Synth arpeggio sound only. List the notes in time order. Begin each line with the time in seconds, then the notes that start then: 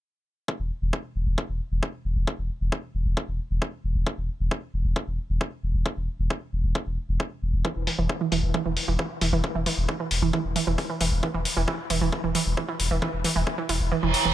7.65 E3
7.87 E3
7.99 E3
8.21 E3
8.32 E3
8.54 E3
8.66 E3
8.88 E3
8.99 E3
9.22 E3
9.33 E3
9.55 E3
9.66 E3
9.89 E3
10.00 E3
10.22 E3
10.33 E3
10.56 E3
10.67 E3
10.90 E3
11.01 E3
11.23 E3
11.34 E3
11.57 E3
11.68 E3
11.90 E3
12.01 E3
12.24 E3
12.35 E3
12.57 E3
12.69 E3
12.91 E3
13.02 E3
13.24 E3
13.36 E3
13.58 E3
13.69 E3
13.92 E3
14.03 E3
14.25 E3